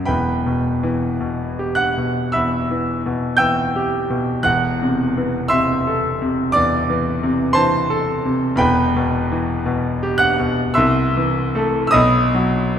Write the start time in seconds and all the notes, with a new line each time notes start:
Already playing: F#2 F#3 F#4
0.05 E1 E2 B4 G5 B5
0.46 B2
0.83 E3
1.21 B2
1.59 G4
1.75 F#5 F#6
1.98 B2
2.32 E2 E5 B5 E6
2.71 E3
3.06 B2
3.37 E3 G5 E6 G6
3.76 G4
4.10 B2
4.43 E1 E2 F#5 F#6
4.82 C3
5.17 E3
5.48 C3 E5 C6 E6
5.87 A4
6.22 C3
6.52 E2 D5 D6
6.90 E3
7.23 C3
7.53 E3 C5 A5 C6
7.90 A4
8.25 C3
8.56 E2 B4 G5 B5
8.60 E1
8.96 B2
9.32 E3
9.66 B2
10.03 G4
10.18 F#5 F#6
10.40 B2
10.74 C2 E5 C6 E6
11.17 E3
11.55 A3 A4
11.87 D#6 E6
11.92 B1 D#5 B5
12.35 F#3